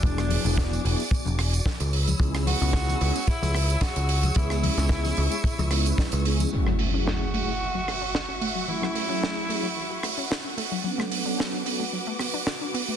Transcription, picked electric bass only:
X:1
M:4/4
L:1/16
Q:1/4=111
K:F#m
V:1 name="Picked electric bass" clef=bass
E,,,2 z E,,,2 z E,,, z2 E,,,2 z2 C,,2 z | C,,2 z C,,2 z C,, z2 C,,2 z2 C,,2 z | C,,2 z C,,2 z C,, z2 C,,2 z2 C,,2 z | z16 |
z16 | z16 |]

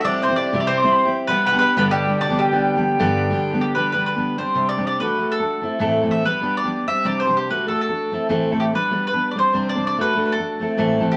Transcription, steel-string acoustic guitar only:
X:1
M:4/4
L:1/16
Q:"Swing" 1/4=193
K:G
V:1 name="Steel-string acoustic guitar"
[G,CEG]3 [CEG]3 [C,G,CEG]4 [G,CEG]3 [CEG]3 | [G,B,DG]3 [G,B,DG]3 [G,,D,G,B,DG]4 [G,B,DG]3 [G,B,DG]3 | [G,B,DG]3 [G,B,DG]3 [G,,D,G,B,DG]4 [G,B,DG]3 [G,B,DG]3 | [G,B,DG]2 [G,B,DG]3 [G,B,DG]3 [G,CDG]2 [C,G,CDG]3 [C,G,CDG]3 |
[A,DFA]2 [A,DFA]3 [DFA]3 [A,CEA]2 [A,,E,A,CEA]3 [A,,E,A,CEA]3 | [G,B,DG]2 [G,B,DG]3 [G,B,DG]3 [G,CDG]2 [C,G,CDG]3 [C,G,CDG]3 | [A,DFA]2 [A,DFA]3 [DFA]3 [A,CEA]2 [A,,E,A,CEA]3 [A,,E,A,CEA]3 | [G,B,DB]2 [G,B,DB]3 [G,B,DB]3 [G,CDc]2 [C,G,CDc]3 [C,G,CDc]3 |
[A,DFA]2 [A,DFA]3 [DFA]3 [A,CEA]2 [A,,E,A,CEA]3 [A,,E,A,CEA]3 |]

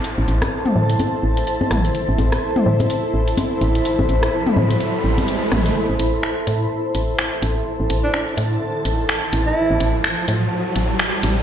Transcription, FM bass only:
X:1
M:4/4
L:1/16
Q:"Swing 16ths" 1/4=126
K:Am
V:1 name="FM bass" clef=bass
z A,,, A,,,2 z2 A,,2 z2 A,,,2 z2 A,,,2 | z A,,, A,,,2 z2 A,,2 z2 A,,,2 z2 A,,,2 | z A,,, A,,,2 z2 A,,2 z2 A,,,2 z2 A,,,2 | z A,,, A,,,2 z2 A,,2 z2 A,,,2 z2 A,,,2 |
z A,,, A,,,2 z2 A,,2 z2 A,,,2 z2 A,,,2 | z A,,, A,,,2 z2 A,,2 z2 A,,,2 z2 A,,,2 |]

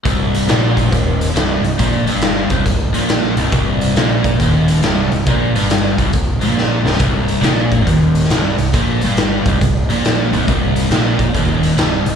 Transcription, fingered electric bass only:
X:1
M:4/4
L:1/8
Q:"Swing" 1/4=138
K:Cm
V:1 name="Fingered electric bass" clef=bass
C,,,2 B,,,2 E,,,2 C,,, C,,, | B,,, G,,,2 C,,, C,,, B,,,2 C,,, | C,,,2 B,,,2 E,,,2 C,,, C,,, | B,,, G,,,2 C,,, C,,, B,,,2 C,,, |
C,,,2 B,,,2 E,,,2 C,,, C,,, | B,,, G,,,2 C,,, C,,, B,,,2 C,,, | C,,,2 B,,,2 E,,,2 C,,, C,,, |]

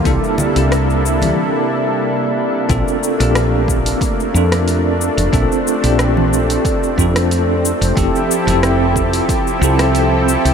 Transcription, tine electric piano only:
X:1
M:4/4
L:1/16
Q:"Swing 16ths" 1/4=91
K:Bblyd
V:1 name="Tine electric piano"
[B,DEA]3 [B,DEG]4- [B,DEG] z8 | [CDFA]3 [CDFG]6- [CDFG] [CDFA]6 | [CDFA]3 [CDFG]6- [CDFG] [CDFA]6 | [CEGA]3 [CEGA]6- [CEGA] [CEGA]6 |]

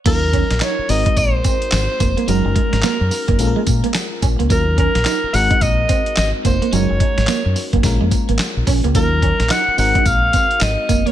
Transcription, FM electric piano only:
X:1
M:4/4
L:1/8
Q:"Swing 16ths" 1/4=108
K:Ebdor
V:1 name="FM electric piano"
[G,DEFB]3 [A,CEGB]4- [A,CEGB] | [A,DEGB]4 [A,B,DF=AB]4 | [G,DEFB]3 [A,CEGB]4- [A,CEGB] | [A,DEGB]4 [A,B,DFB]4 |
[G,DEFB]3 [A,CEGB]4- [A,CEGB] |]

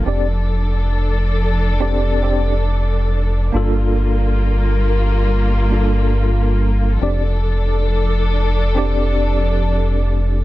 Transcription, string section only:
X:1
M:4/4
L:1/8
Q:"Swing 16ths" 1/4=69
K:Fmix
V:1 name="String section"
[F,DA]8 | [G,B,F]8 | [F,DA]8 |]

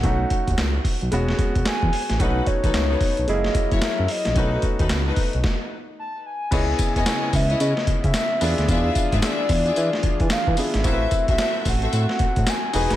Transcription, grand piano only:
X:1
M:4/4
L:1/8
Q:"Swing 16ths" 1/4=111
K:E
V:1 name="Grand piano"
[A,CDF]4 [G,B,CF]4 | [A,CDF]4 [G,^A,CEG]4 | [A,CDF]4 z4 | [B,CEG]6- [B,CEG] [B,=D=FG]- |
[B,=D=FG]6- [B,DFG] [B,DFG] | [=CEF^AB]6- [CEFAB] [DFGB] |]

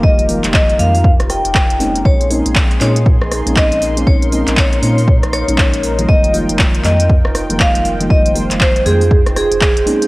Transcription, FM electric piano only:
X:1
M:4/4
L:1/16
Q:"Swing 16ths" 1/4=119
K:Bbdor
V:1 name="FM electric piano" clef=bass
[E,F,G,A,B,]2 [E,F,G,A,B,]4 [E,F,G,A,B,] z6 z [A,B,CDE]2- | [A,B,CDE]2 [A,B,CDE]4 [A,B,CDE] z4 [A,B,CDE]4 [A,B,CDE]- | [A,B,CDE]2 [A,B,CDE]4 [A,B,CDE] z4 [A,B,DE]4 [E,F,G,A,B,]- | [E,F,G,A,B,]2 [E,F,G,A,B,]4 [E,F,G,A,B,] z4 [E,F,G,A,B,]4 [E,F,G,A,B,]- |
[E,F,G,A,B,]2 [E,F,G,A,B,]4 [E,F,G,A,B,] z6 z [A,B,CDE]2 |]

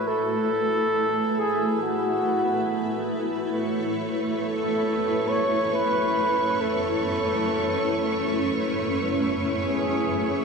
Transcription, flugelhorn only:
X:1
M:4/4
L:1/8
Q:1/4=69
K:A
V:1 name="Flugelhorn"
A3 G F3 z | z2 A2 c B2 A- | A4- A z G2 |]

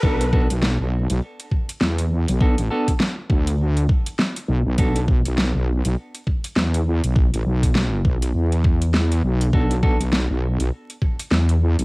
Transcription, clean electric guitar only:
X:1
M:4/4
L:1/8
Q:"Swing 16ths" 1/4=101
K:Bm
V:1 name="Clean electric guitar"
[B,DFA] [B,DFA] z6 | [B,DFA] [B,DFA] z6 | [B,DFA] z6 z | z8 |
[B,DFA] [B,DFA] z6 |]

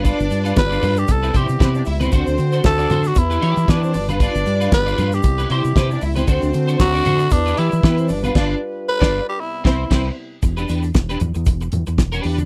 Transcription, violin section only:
X:1
M:4/4
L:1/16
Q:"Swing 16ths" 1/4=116
K:Em
V:1 name="Violin section"
[Dd]6 z6 [Cc] [Dd] [Ee] [Cc] | [Cc]6 z6 [B,B] [Cc] [Dd] [B,B] | [Dd]6 z6 [Cc] [Dd] [Ee] [Cc] | [Cc]6 z6 [B,B] [Cc] [Dd] [B,B] |
[Dd]2 z3 [Dd]2 z3 [Cc]2 [Cc]2 z2 | z16 |]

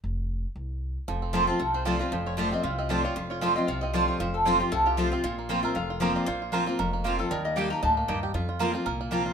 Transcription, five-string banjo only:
X:1
M:4/4
L:1/8
Q:"Swing" 1/4=231
K:Fmix
V:1 name="Five-string banjo"
z8 | F, C F C F C F F | F, C F C F C F F | F F F C F C F F |
F2 F F F F F C | F B, F B F F B B, | F F B B, B B, F F | G, B, G B, E B, E G |
F F B B, B B, F F |]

